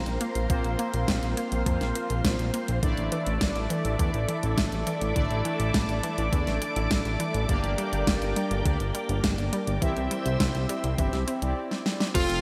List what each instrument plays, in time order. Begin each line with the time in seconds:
Already playing: analog polysynth A#3 C4 F4 C5, synth arpeggio sound C4, string machine A#4 C5 F5 C6
0.06 analog synth bass A#1, closed hi-hat
0.21 synth arpeggio sound A#3, closed hi-hat
0.35 analog synth bass A#1, closed hi-hat
0.50 analog synth bass A#1, synth arpeggio sound F3, analog polysynth A#3 C4 F4 C5, kick, closed hi-hat
0.64 analog synth bass A#1, closed hi-hat
0.79 synth arpeggio sound A#3, closed hi-hat
0.94 analog synth bass A#1, closed hi-hat
1.08 analog synth bass A#1, synth arpeggio sound C4, kick, snare, closed hi-hat
1.23 analog synth bass A#1, closed hi-hat
1.37 synth arpeggio sound A#3, closed hi-hat
1.52 analog synth bass A#1, closed hi-hat
1.66 analog synth bass F2, synth arpeggio sound F3, analog polysynth A#3 C4 F4 C5, kick, closed hi-hat
1.81 analog synth bass A#1, snare, closed hi-hat
1.95 synth arpeggio sound A#3, closed hi-hat
2.10 analog synth bass A#1, closed hi-hat
2.25 analog synth bass A#1, synth arpeggio sound C4, kick, snare, closed hi-hat
2.39 analog synth bass A#1, closed hi-hat
2.54 synth arpeggio sound A#3, closed hi-hat
2.68 analog synth bass A#1, closed hi-hat
2.83 analog synth bass A1, synth arpeggio sound D3, analog polysynth A3 D4 E4 D5, string machine A4 D5 E5 D6, kick, closed hi-hat
2.97 analog synth bass A1, closed hi-hat
3.12 synth arpeggio sound E3, closed hi-hat
3.27 analog synth bass A1, closed hi-hat
3.41 analog synth bass A1, synth arpeggio sound A3, kick, snare, closed hi-hat
3.56 analog synth bass A1, closed hi-hat
3.70 synth arpeggio sound E3, closed hi-hat
3.85 analog synth bass A1, closed hi-hat
3.99 analog synth bass E2, synth arpeggio sound D3, analog polysynth A3 D4 E4 D5, kick, closed hi-hat
4.14 analog synth bass A1, closed hi-hat
4.28 synth arpeggio sound E3, closed hi-hat
4.43 analog synth bass A1, closed hi-hat
4.58 analog synth bass A1, synth arpeggio sound A3, kick, snare, closed hi-hat
4.72 analog synth bass A1, closed hi-hat
4.87 synth arpeggio sound E3, closed hi-hat
5.01 analog synth bass A1, closed hi-hat
5.16 analog synth bass A1, synth arpeggio sound D3, analog polysynth A3 D4 E4 D5, kick, closed hi-hat
5.31 analog synth bass A1, closed hi-hat
5.45 synth arpeggio sound E3, closed hi-hat
5.60 analog synth bass A1, closed hi-hat
5.74 analog synth bass A1, synth arpeggio sound A3, kick, snare, closed hi-hat
5.89 analog synth bass A1, closed hi-hat
6.03 synth arpeggio sound E3, closed hi-hat
6.18 analog synth bass A1, closed hi-hat
6.32 analog synth bass E2, synth arpeggio sound D3, analog polysynth A3 D4 E4 D5, kick, closed hi-hat
6.47 analog synth bass A1, snare, closed hi-hat
6.62 synth arpeggio sound E3, closed hi-hat
6.76 analog synth bass A1, closed hi-hat
6.91 analog synth bass A1, synth arpeggio sound A3, kick, snare, closed hi-hat
7.05 analog synth bass A1, closed hi-hat
7.20 synth arpeggio sound E3, closed hi-hat
7.34 analog synth bass A1, closed hi-hat
7.49 analog synth bass G1, synth arpeggio sound D3, analog polysynth A#3 D4 G4 D5, string machine A#4 G5, kick, closed hi-hat
7.64 analog synth bass G1, closed hi-hat
7.78 synth arpeggio sound G3, closed hi-hat
7.93 analog synth bass G1, closed hi-hat
8.07 analog synth bass G1, synth arpeggio sound A#3, kick, snare, closed hi-hat
8.22 analog synth bass G1, closed hi-hat
8.36 synth arpeggio sound G3, closed hi-hat
8.51 analog synth bass G1, closed hi-hat
8.65 analog synth bass D2, synth arpeggio sound D3, analog polysynth A#3 D4 G4 D5, kick, closed hi-hat
8.80 analog synth bass G1, closed hi-hat
8.95 synth arpeggio sound G3, closed hi-hat
9.09 analog synth bass G1, closed hi-hat
9.24 analog synth bass G1, synth arpeggio sound A#3, kick, snare, closed hi-hat
9.38 analog synth bass G1, closed hi-hat
9.53 synth arpeggio sound G3, closed hi-hat
9.67 analog synth bass G1, closed hi-hat
9.82 analog synth bass C2, synth arpeggio sound E3, analog polysynth C4 E4 G4 E5, string machine C5 E5 G5 E6, kick, closed hi-hat
9.97 analog synth bass C2, closed hi-hat
10.11 synth arpeggio sound G3, closed hi-hat
10.26 analog synth bass C2, closed hi-hat
10.40 analog synth bass C2, synth arpeggio sound C4, kick, snare, closed hi-hat
10.55 analog synth bass C2, closed hi-hat
10.69 synth arpeggio sound G3, closed hi-hat
10.84 analog synth bass C2, closed hi-hat
10.98 analog synth bass G1, synth arpeggio sound E3, analog polysynth C4 E4 G4 E5, kick, closed hi-hat
11.13 analog synth bass C2, snare, closed hi-hat
11.28 synth arpeggio sound C4, closed hi-hat
11.42 analog synth bass C2, analog polysynth C4 E4 G4 D5, closed hi-hat
11.71 snare
11.86 snare
12.00 snare
12.15 analog synth bass F1, synth arpeggio sound F3, analog polysynth C4 F4 A4 F5, lead electric guitar F4, string machine A4 C5 F5 C6, kick, closed hi-hat, crash, tambourine
12.30 analog synth bass F1, closed hi-hat